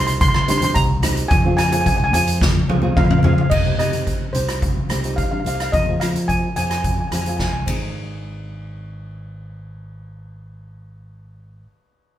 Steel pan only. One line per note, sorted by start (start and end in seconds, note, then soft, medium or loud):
0.07 0.14 C6 medium
0.21 0.27 C6 loud
0.28 0.35 C6 medium
0.36 0.41 C6 medium
0.42 0.49 C6 medium
0.50 0.57 C6 medium
0.58 0.63 C6 medium
0.64 0.72 C6 medium
0.74 1.32 A#5 loud
1.28 1.56 G#5 loud
1.57 1.63 G#5 loud
1.64 1.71 G#5 medium
1.73 1.80 G#5 medium
1.81 1.86 G#5 medium
1.87 1.95 G#5 medium
1.96 2.03 G#5 medium
2.04 2.11 G#5 medium
2.13 3.20 G#5 loud
2.97 3.03 F5 medium
3.04 3.10 F5 medium
3.11 3.17 F5 medium
3.19 3.25 F5 medium
3.26 3.32 F5 medium
3.33 3.40 F5 medium
3.41 3.49 F5 medium
3.50 3.78 D#5 medium
3.79 4.36 D#5 medium
4.33 5.19 C5 medium
5.16 5.22 F5 medium
5.23 5.30 F5 medium
5.31 5.38 F5 medium
5.40 5.46 F5 medium
5.47 5.54 F5 medium
5.55 5.61 F5 medium
5.62 5.70 F5 medium
5.72 6.01 D#5 medium
6.00 6.12 F5 medium
6.28 6.54 G#5 medium
6.56 6.61 G#5 medium
6.62 6.69 G#5 medium
6.70 6.76 G#5 medium
6.78 6.84 G#5 medium
6.85 6.91 G#5 medium
6.92 6.99 G#5 soft
7.00 7.06 G#5 medium
7.07 7.14 G#5 soft
7.15 7.21 G#5 medium
7.22 7.28 G#5 soft
7.29 7.36 G#5 medium
7.37 7.42 G#5 medium
7.44 7.51 G#5 medium
7.52 7.60 G#5 medium